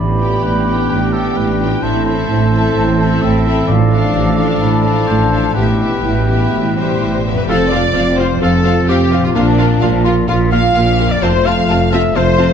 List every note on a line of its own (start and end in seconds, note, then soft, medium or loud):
0.00 0.38 A1 soft
0.00 0.37 A2 soft
0.00 0.89 A2 soft
0.00 0.19 B3 soft
0.00 1.79 B3 soft
0.00 0.21 D4 soft
0.00 1.80 D4 soft
0.00 1.79 G4 soft
0.00 1.85 B4 soft
0.00 0.44 D5 soft
0.00 0.91 B5 soft
0.18 0.65 B3 soft
0.18 1.13 B3 soft
0.18 0.45 F4 soft
0.18 0.64 G4 soft
0.18 0.66 G5 soft
0.42 0.84 A1 soft
0.42 0.84 A2 soft
0.42 1.36 D4 soft
0.42 0.69 E4 soft
0.42 0.89 B4 soft
0.65 1.12 B3 soft
0.65 1.39 D4 soft
0.65 1.11 G4 soft
0.65 1.58 G4 soft
0.65 1.13 G5 soft
0.89 1.31 A1 soft
0.89 1.31 A2 soft
0.89 1.82 A2 soft
0.89 1.14 B4 soft
0.89 1.36 G5 soft
1.12 1.59 B3 soft
1.12 1.85 B3 soft
1.12 1.58 G4 soft
1.12 1.38 A4 soft
1.12 1.59 G5 soft
1.35 1.77 A1 soft
1.35 1.77 A2 soft
1.35 1.85 D4 soft
1.35 1.62 G4 soft
1.35 1.85 B4 soft
1.35 1.84 G5 soft
1.60 1.83 B3 soft
1.60 1.84 F4 soft
1.60 1.83 G4 soft
1.60 1.85 G4 soft
1.60 1.83 G5 soft
1.82 2.24 A1 soft
1.82 2.24 A2 soft
1.82 3.68 A2 soft
1.82 3.65 C4 soft
1.82 2.05 C4 soft
1.82 3.64 E4 soft
1.82 2.31 E4 soft
1.82 2.05 A4 soft
1.82 5.52 A4 soft
1.82 2.05 C5 soft
1.82 2.06 E5 soft
1.82 2.75 A5 soft
2.06 2.51 C4 soft
2.06 2.98 C4 soft
2.06 2.52 A4 soft
2.06 3.24 C5 soft
2.06 2.51 E5 soft
2.29 2.70 A1 soft
2.29 2.70 A2 soft
2.29 2.55 D4 soft
2.29 3.22 E4 soft
2.52 2.98 C4 soft
2.52 3.25 C4 soft
2.52 2.98 A4 soft
2.52 2.98 E5 soft
2.75 3.17 A1 soft
2.75 3.17 A2 medium
2.75 3.71 E3 soft
2.75 2.83 A5 soft
2.99 3.45 C4 soft
2.99 3.71 C4 soft
2.99 3.44 A4 soft
2.99 3.45 E5 soft
2.99 3.06 A5 soft
3.21 3.63 A1 soft
3.21 3.63 A2 medium
3.21 3.71 E4 soft
3.21 3.46 E4 soft
3.21 3.67 E5 soft
3.21 3.72 G5 soft
3.45 3.69 C4 soft
3.45 3.72 E4 soft
3.45 3.68 A4 soft
3.45 4.37 A4 soft
3.45 3.68 E5 soft
3.68 4.09 A1 medium
3.68 4.09 A2 soft
3.68 4.34 A2 medium
3.68 5.55 A2 medium
3.68 5.52 F3 soft
3.68 5.53 D4 soft
3.68 4.17 F4 soft
3.68 5.09 D5 soft
3.68 4.61 F5 medium
3.90 4.83 D4 soft
3.90 4.37 D4 soft
3.90 4.36 A4 soft
3.90 4.37 F5 soft
4.14 4.55 A1 medium
4.14 4.56 A2 soft
4.14 5.58 F3 soft
4.14 4.39 G4 soft
4.37 4.83 D4 soft
4.37 4.60 F4 soft
4.37 4.83 A4 soft
4.37 5.31 A4 soft
4.37 4.83 F5 soft
4.60 5.02 A1 soft
4.60 5.02 A2 soft
4.60 5.58 A3 soft
4.60 5.10 E4 soft
4.60 4.84 A5 soft
4.84 5.58 D4 soft
4.84 5.30 D4 soft
4.84 5.29 A4 soft
4.84 5.31 F5 soft
4.84 5.54 A5 soft
5.07 5.50 A1 soft
5.07 5.50 A2 soft
5.07 5.30 D4 soft
5.07 5.58 F4 soft
5.07 5.53 C5 soft
5.30 5.42 D4 soft
5.30 5.55 D4 soft
5.30 5.55 A4 soft
5.30 5.58 A4 soft
5.30 5.56 F5 soft
5.54 5.98 A1 soft
5.54 5.98 A2 soft
5.54 6.52 A2 soft
5.54 7.24 B2 soft
5.54 5.79 B3 soft
5.54 6.74 E4 soft
5.54 7.24 E4 soft
5.54 7.24 G4 soft
5.54 5.79 G4 soft
5.54 7.20 B4 soft
5.54 5.80 E5 soft
5.54 7.21 G5 soft
5.80 7.50 B2 soft
5.80 6.28 B3 soft
5.80 6.26 G4 soft
5.80 6.28 E5 soft
6.03 6.47 A1 soft
6.03 6.46 A2 soft
6.03 6.99 E4 soft
6.28 6.76 B3 soft
6.28 6.75 G4 soft
6.28 7.24 G4 soft
6.28 6.76 E5 soft
6.51 6.94 A1 soft
6.51 6.94 A2 soft
6.51 7.51 A2 soft
6.76 7.23 G3 soft
6.76 7.50 G3 soft
6.76 7.23 G4 soft
6.76 7.32 C5 soft
6.76 7.24 E5 soft
7.00 7.43 A1 soft
7.00 7.42 A2 soft
7.00 7.50 E4 soft
7.25 7.48 B3 soft
7.25 7.48 G4 soft
7.25 7.51 G4 soft
7.25 7.48 E5 soft
7.31 9.29 F2 medium
7.36 9.31 C4 soft
7.36 7.48 B4 soft
7.36 7.43 B4 soft
7.40 9.26 F4 soft
7.44 7.90 F1 medium
7.44 7.89 F2 medium
7.44 9.36 A4 soft
7.44 7.71 A4 medium
7.49 8.39 C4 medium
7.49 7.58 C4 medium
7.49 8.39 F4 medium
7.49 7.58 F4 medium
7.49 7.57 F5 medium
7.70 7.79 C4 soft
7.70 7.80 F4 medium
7.70 8.18 D5 medium
7.70 8.21 D5 medium
7.70 7.81 F5 soft
7.93 8.36 F1 medium
7.93 8.37 F2 medium
7.93 8.02 C4 medium
7.93 8.01 F4 soft
7.93 8.05 F5 soft
8.17 8.26 C4 medium
8.17 8.26 F4 soft
8.17 8.41 C5 medium
8.17 8.28 F5 soft
8.40 8.83 F1 medium
8.40 8.83 F2 medium
8.40 9.33 C4 medium
8.40 8.50 C4 soft
8.40 9.33 F4 medium
8.40 8.49 F4 medium
8.40 8.87 A4 medium
8.40 8.88 A4 medium
8.40 8.51 F5 medium
8.64 8.72 C4 soft
8.64 8.72 F4 soft
8.64 8.74 F5 soft
8.87 9.30 F1 medium
8.87 9.29 F2 medium
8.87 8.97 C4 medium
8.87 8.97 F4 soft
8.87 9.23 G4 medium
8.87 8.97 F5 medium
9.12 9.20 C4 medium
9.12 9.20 F4 medium
9.12 9.20 F5 soft
9.18 11.16 A#2 medium
9.22 11.18 A#3 soft
9.22 9.28 F4 medium
9.22 9.35 F4 medium
9.27 11.13 F4 soft
9.31 9.76 A#2 medium
9.31 9.43 A#3 medium
9.31 11.23 A#4 soft
9.35 9.77 A#1 medium
9.35 10.27 A#3 soft
9.35 10.06 D4 medium
9.35 10.04 D4 medium
9.35 9.44 F4 medium
9.35 10.27 F4 medium
9.35 9.44 F5 medium
9.58 9.66 A#3 medium
9.58 9.66 F4 medium
9.58 9.67 F5 medium
9.82 10.23 A#1 medium
9.82 10.23 A#2 medium
9.82 9.90 A#3 soft
9.82 9.90 F4 medium
9.82 9.90 F5 medium
10.05 10.14 A#3 medium
10.05 10.28 F4 medium
10.05 10.13 F4 medium
10.05 10.14 F4 medium
10.05 10.13 F5 soft
10.28 10.70 A#1 medium
10.28 10.70 A#2 medium
10.28 11.21 A#3 medium
10.28 10.37 A#3 medium
10.28 10.37 F4 medium
10.28 10.52 F4 medium
10.28 11.21 F4 medium
10.28 10.36 F5 medium
10.52 10.61 A#3 medium
10.52 10.61 F4 soft
10.52 10.60 F5 soft
10.52 11.10 F5 medium
10.52 11.14 F5 medium
10.75 11.17 A#1 medium
10.75 11.17 A#2 medium
10.75 10.85 A#3 medium
10.75 10.85 F4 medium
10.75 10.83 F5 medium
10.99 11.08 A#3 medium
10.99 11.08 F4 medium
10.99 11.07 F5 soft
11.05 12.53 F2 medium
11.10 12.53 C4 soft
11.10 11.23 D5 medium
11.10 11.24 D5 medium
11.14 12.53 F4 soft
11.18 12.53 A4 soft
11.22 11.64 F1 medium
11.22 11.64 F2 medium
11.22 12.15 A3 medium
11.22 11.31 C4 medium
11.22 12.14 F4 medium
11.22 11.31 F4 medium
11.22 11.48 C5 medium
11.22 11.46 C5 medium
11.22 11.31 A5 medium
11.45 11.53 C4 medium
11.45 11.53 F4 medium
11.45 11.92 F5 medium
11.45 11.93 F5 medium
11.45 11.55 A5 medium
11.69 12.10 F1 medium
11.69 12.10 F2 medium
11.69 11.78 C4 medium
11.69 11.78 F4 medium
11.69 11.77 A5 medium
11.92 12.01 C4 medium
11.92 12.01 F4 medium
11.92 12.00 E5 medium
11.92 12.18 E5 medium
11.92 12.01 A5 medium
12.15 12.53 F1 medium
12.15 12.53 F2 medium
12.15 12.53 A3 medium
12.15 12.23 C4 medium
12.15 12.24 F4 medium
12.15 12.53 F4 medium
12.15 12.53 C5 medium
12.15 12.53 C5 loud
12.15 12.23 A5 medium
12.38 12.46 C4 medium
12.38 12.46 F4 medium
12.38 12.46 A5 medium